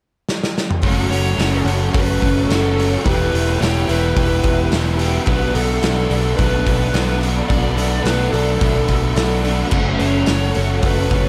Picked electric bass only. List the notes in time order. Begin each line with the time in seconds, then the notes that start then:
0.83 F#1
1.10 F#1
1.38 F#1
1.65 F#1
1.95 F#1
2.23 F#1
2.49 F#1
3.06 E1
3.34 E1
3.61 E1
3.89 E1
4.16 E1
4.44 E1
4.72 E1
5.27 B1
5.55 B1
5.82 B1
6.10 B1
6.39 B1
6.67 B1
6.94 B1
7.50 B1
7.76 B1
8.04 B1
8.33 B1
8.62 B1
8.89 B1
9.16 B1
9.72 F#1
10.00 F#1
10.29 F#1
10.57 F#1
10.83 F#1
11.11 F#1